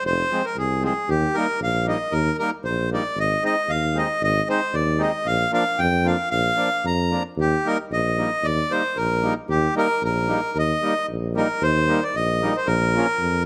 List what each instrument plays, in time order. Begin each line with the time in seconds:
0.04 tuba F1, accordion C5
0.30 accordion F3 G#3 C4
0.45 accordion A#4
0.56 tuba C2, accordion G#4
0.81 accordion F3 G#3 C4 G#4
1.09 tuba D#2, accordion G4
1.34 accordion G3 A#3 D#4 A#4
1.61 tuba A#1, accordion F5
1.85 accordion G3 A#3 D#4
1.89 accordion D#5
2.11 tuba D#2, accordion A#4
2.39 accordion G3 A#3 D#4 A#4
2.64 tuba A#1, accordion C5
2.91 accordion G3 A#3 D#4 D5
3.16 tuba G#1, accordion D#5
3.43 accordion G#3 C4 D#4 D#5
3.68 tuba D#2, accordion F5
3.94 accordion G#3 C4 D#4 D#5
4.22 tuba G#1, accordion D#5
4.48 accordion G#3 C4 D#4 C5
4.73 tuba D#2, accordion D5
4.98 accordion G#3 C4 D#4 D#5
5.26 tuba A#1, accordion F5
5.51 accordion F3 A#3 D4 F5
5.79 tuba F2, accordion G5
6.04 accordion F3 A#3 D4 F5
6.31 tuba A#1, accordion F5
6.55 accordion F3 A#3 D4
6.84 tuba F2, accordion A#5
7.09 accordion F3 A#3 D4
7.36 tuba D#2
7.41 accordion G4
7.65 accordion G3 A#3 D#4 A#4
7.91 tuba A#1, accordion D#5
8.18 accordion G3 A#3 D#4
8.43 tuba D#2, accordion D5
8.70 accordion G3 A#3 D#4 C5
8.96 tuba A#1, accordion A#4
9.22 accordion G3 A#3 D#4
9.49 tuba D#2, accordion G4
9.75 accordion G3 A#3 D#4 A#4
10.02 tuba A#1, accordion A#4
10.27 accordion G3 A#3 D#4
10.55 tuba D#2, accordion D#5
10.81 accordion G3 A#3 D#4
11.09 tuba A#1
11.34 accordion G3 A#3 D#4 A#4
11.62 tuba D#2, accordion C5
11.87 accordion G3 A#3 D#4
12.03 accordion D5
12.14 tuba A#1, accordion D#5
12.42 accordion G3 A#3 D#4
12.56 accordion C5
12.67 tuba A#1, accordion A#4
12.94 accordion F3 A#3 C#4
13.19 tuba F2